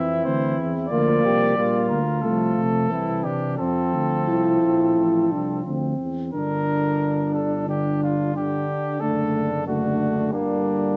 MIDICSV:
0, 0, Header, 1, 6, 480
1, 0, Start_track
1, 0, Key_signature, -1, "major"
1, 0, Tempo, 656455
1, 662, Time_signature, 4, 2, 24, 8
1, 1624, Tempo, 681818
1, 4519, Key_signature, -2, "minor"
1, 5464, Tempo, 660066
1, 7858, End_track
2, 0, Start_track
2, 0, Title_t, "Cornet"
2, 0, Program_c, 0, 56
2, 0, Note_on_c, 0, 76, 66
2, 154, Note_off_c, 0, 76, 0
2, 183, Note_on_c, 0, 72, 56
2, 418, Note_off_c, 0, 72, 0
2, 647, Note_on_c, 0, 74, 80
2, 1344, Note_off_c, 0, 74, 0
2, 1379, Note_on_c, 0, 70, 49
2, 1620, Note_on_c, 0, 69, 54
2, 1631, Note_off_c, 0, 70, 0
2, 2340, Note_on_c, 0, 67, 48
2, 2350, Note_off_c, 0, 69, 0
2, 2575, Note_off_c, 0, 67, 0
2, 2579, Note_on_c, 0, 69, 61
2, 4008, Note_off_c, 0, 69, 0
2, 4519, Note_on_c, 0, 70, 62
2, 5199, Note_off_c, 0, 70, 0
2, 5233, Note_on_c, 0, 69, 42
2, 5463, Note_off_c, 0, 69, 0
2, 5473, Note_on_c, 0, 67, 49
2, 5709, Note_off_c, 0, 67, 0
2, 5725, Note_on_c, 0, 65, 48
2, 5956, Note_off_c, 0, 65, 0
2, 5964, Note_on_c, 0, 67, 50
2, 6429, Note_on_c, 0, 69, 56
2, 6440, Note_off_c, 0, 67, 0
2, 6908, Note_off_c, 0, 69, 0
2, 6918, Note_on_c, 0, 66, 53
2, 7381, Note_off_c, 0, 66, 0
2, 7395, Note_on_c, 0, 62, 45
2, 7858, Note_off_c, 0, 62, 0
2, 7858, End_track
3, 0, Start_track
3, 0, Title_t, "Flugelhorn"
3, 0, Program_c, 1, 56
3, 0, Note_on_c, 1, 64, 50
3, 658, Note_off_c, 1, 64, 0
3, 662, Note_on_c, 1, 65, 41
3, 897, Note_off_c, 1, 65, 0
3, 912, Note_on_c, 1, 67, 49
3, 1142, Note_off_c, 1, 67, 0
3, 1150, Note_on_c, 1, 65, 49
3, 1889, Note_off_c, 1, 65, 0
3, 2104, Note_on_c, 1, 64, 43
3, 2345, Note_on_c, 1, 62, 43
3, 2356, Note_off_c, 1, 64, 0
3, 2589, Note_on_c, 1, 60, 38
3, 2600, Note_off_c, 1, 62, 0
3, 4282, Note_off_c, 1, 60, 0
3, 4523, Note_on_c, 1, 62, 38
3, 5439, Note_off_c, 1, 62, 0
3, 5468, Note_on_c, 1, 62, 38
3, 5944, Note_off_c, 1, 62, 0
3, 5953, Note_on_c, 1, 62, 34
3, 6424, Note_off_c, 1, 62, 0
3, 6438, Note_on_c, 1, 62, 35
3, 6903, Note_off_c, 1, 62, 0
3, 6907, Note_on_c, 1, 62, 32
3, 7384, Note_on_c, 1, 58, 37
3, 7395, Note_off_c, 1, 62, 0
3, 7858, Note_off_c, 1, 58, 0
3, 7858, End_track
4, 0, Start_track
4, 0, Title_t, "French horn"
4, 0, Program_c, 2, 60
4, 0, Note_on_c, 2, 60, 47
4, 641, Note_off_c, 2, 60, 0
4, 659, Note_on_c, 2, 58, 44
4, 1130, Note_off_c, 2, 58, 0
4, 1141, Note_on_c, 2, 58, 34
4, 1448, Note_off_c, 2, 58, 0
4, 1628, Note_on_c, 2, 57, 39
4, 2105, Note_on_c, 2, 60, 37
4, 2115, Note_off_c, 2, 57, 0
4, 2585, Note_off_c, 2, 60, 0
4, 2589, Note_on_c, 2, 60, 35
4, 3015, Note_off_c, 2, 60, 0
4, 3073, Note_on_c, 2, 64, 43
4, 3802, Note_on_c, 2, 62, 42
4, 3813, Note_off_c, 2, 64, 0
4, 4036, Note_off_c, 2, 62, 0
4, 4041, Note_on_c, 2, 60, 39
4, 4510, Note_off_c, 2, 60, 0
4, 4521, Note_on_c, 2, 62, 38
4, 5438, Note_off_c, 2, 62, 0
4, 5471, Note_on_c, 2, 62, 35
4, 5946, Note_off_c, 2, 62, 0
4, 5956, Note_on_c, 2, 62, 34
4, 6435, Note_on_c, 2, 57, 37
4, 6445, Note_off_c, 2, 62, 0
4, 6791, Note_off_c, 2, 57, 0
4, 6914, Note_on_c, 2, 57, 34
4, 7389, Note_on_c, 2, 55, 36
4, 7399, Note_off_c, 2, 57, 0
4, 7858, Note_off_c, 2, 55, 0
4, 7858, End_track
5, 0, Start_track
5, 0, Title_t, "Trombone"
5, 0, Program_c, 3, 57
5, 0, Note_on_c, 3, 52, 48
5, 538, Note_off_c, 3, 52, 0
5, 662, Note_on_c, 3, 53, 48
5, 1139, Note_on_c, 3, 55, 40
5, 1150, Note_off_c, 3, 53, 0
5, 1453, Note_off_c, 3, 55, 0
5, 1623, Note_on_c, 3, 53, 38
5, 2099, Note_on_c, 3, 52, 40
5, 2110, Note_off_c, 3, 53, 0
5, 2580, Note_off_c, 3, 52, 0
5, 2584, Note_on_c, 3, 53, 43
5, 4261, Note_off_c, 3, 53, 0
5, 4518, Note_on_c, 3, 50, 39
5, 5436, Note_off_c, 3, 50, 0
5, 5468, Note_on_c, 3, 50, 33
5, 5944, Note_off_c, 3, 50, 0
5, 5955, Note_on_c, 3, 50, 40
5, 6425, Note_off_c, 3, 50, 0
5, 6436, Note_on_c, 3, 50, 38
5, 6902, Note_off_c, 3, 50, 0
5, 6912, Note_on_c, 3, 50, 41
5, 7378, Note_off_c, 3, 50, 0
5, 7389, Note_on_c, 3, 50, 41
5, 7858, Note_off_c, 3, 50, 0
5, 7858, End_track
6, 0, Start_track
6, 0, Title_t, "Tuba"
6, 0, Program_c, 4, 58
6, 0, Note_on_c, 4, 41, 43
6, 181, Note_on_c, 4, 38, 49
6, 192, Note_off_c, 4, 41, 0
6, 412, Note_off_c, 4, 38, 0
6, 417, Note_on_c, 4, 40, 42
6, 655, Note_off_c, 4, 40, 0
6, 661, Note_on_c, 4, 38, 48
6, 897, Note_off_c, 4, 38, 0
6, 905, Note_on_c, 4, 36, 46
6, 1138, Note_off_c, 4, 36, 0
6, 1142, Note_on_c, 4, 34, 44
6, 1373, Note_off_c, 4, 34, 0
6, 1378, Note_on_c, 4, 38, 44
6, 1621, Note_on_c, 4, 36, 43
6, 1631, Note_off_c, 4, 38, 0
6, 1857, Note_off_c, 4, 36, 0
6, 1861, Note_on_c, 4, 48, 42
6, 2092, Note_off_c, 4, 48, 0
6, 2096, Note_on_c, 4, 36, 44
6, 2335, Note_off_c, 4, 36, 0
6, 2343, Note_on_c, 4, 48, 37
6, 2582, Note_off_c, 4, 48, 0
6, 2587, Note_on_c, 4, 41, 46
6, 2827, Note_on_c, 4, 38, 39
6, 2837, Note_off_c, 4, 41, 0
6, 3071, Note_on_c, 4, 36, 33
6, 3082, Note_off_c, 4, 38, 0
6, 3302, Note_off_c, 4, 36, 0
6, 3306, Note_on_c, 4, 34, 39
6, 3554, Note_on_c, 4, 33, 43
6, 3565, Note_off_c, 4, 34, 0
6, 3790, Note_off_c, 4, 33, 0
6, 3795, Note_on_c, 4, 36, 35
6, 4031, Note_off_c, 4, 36, 0
6, 4035, Note_on_c, 4, 38, 38
6, 4270, Note_off_c, 4, 38, 0
6, 4274, Note_on_c, 4, 40, 31
6, 4509, Note_off_c, 4, 40, 0
6, 4513, Note_on_c, 4, 31, 39
6, 6308, Note_off_c, 4, 31, 0
6, 6431, Note_on_c, 4, 30, 41
6, 7366, Note_off_c, 4, 30, 0
6, 7387, Note_on_c, 4, 31, 40
6, 7858, Note_off_c, 4, 31, 0
6, 7858, End_track
0, 0, End_of_file